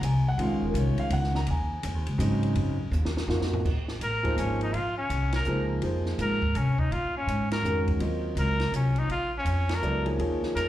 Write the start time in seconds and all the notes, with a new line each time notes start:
0.01 C2 G#5, hi-hat pedal, ride
0.28 F#5
0.38 A#1 D#3 G#3 C#4 F4, ride
0.43 F5
0.49 F#1
0.62 D#1 A#4
0.74 C2, hi-hat pedal, ride
0.79 C#5
0.98 F5, muted upright bass stroke, ride
1.10 C#2 F#5, ride
1.24 snare
1.35 A#5, snare
1.47 D#2, ride
1.51 G#5
1.83 F2, hi-hat pedal, ride
1.95 D#2
2.07 C#2, ride
2.18 G#2 C#3 F#3 C4 D#4, hi-hat pedal, ride
2.43 ride
2.55 F#2, ride
2.91 D#2, hi-hat pedal
3.05 snare
3.17 snare
3.28 F2 A#3 D#4 F4 F#4, snare
3.41 snare
3.53 floor tom
3.65 A#1, kick, crash
3.88 snare
4.01 A1 A#4, hi-hat pedal, ride
4.23 F3 A#3 D#4 G#4 C5, kick, ride
4.37 G#1 C#4, hi-hat pedal, ride
4.61 D#4, ride
4.73 A#1 F4, ride
4.98 C#4
5.10 C2, hi-hat pedal, ride
5.33 A#4, snare, ride
5.45 C#2 F3 A#3 D#4 G#4 C5, hi-hat pedal
5.82 F2 F3 A#3 D#4 G#4 C5, ride
6.06 snare
6.18 G#2 A#4, hi-hat pedal, ride
6.42 kick
6.55 C3 C#4, hi-hat pedal, ride
6.78 D#4, kick
6.91 A#2 F4, ride
7.17 C#4
7.27 G#2, hi-hat pedal, ride
7.51 A#4, snare, ride
7.63 F2 D#3 G#3 C#4 F#4 A#4, hi-hat pedal
7.88 kick, ride
7.99 D#2 F#3 C4 F4 A#4 D#5, ride
8.35 C#2, hi-hat pedal, ride
8.39 A#4
8.60 snare, ride
8.72 C2 C#4, hi-hat pedal, ride
8.96 D#4, ride
9.08 A#1 F4, ride
9.38 C#4
9.45 F2, hi-hat pedal, ride
9.69 snare, ride
9.74 A#4
9.82 C#2 F#3 B3 E4 A4 D5, hi-hat pedal
10.05 F3 A#3 D#4 G#4 C#5, ride
10.18 D#2 F3 A#3 D#4 G#4 C#5, ride
10.43 snare
10.55 F2 A#4, hi-hat pedal, ride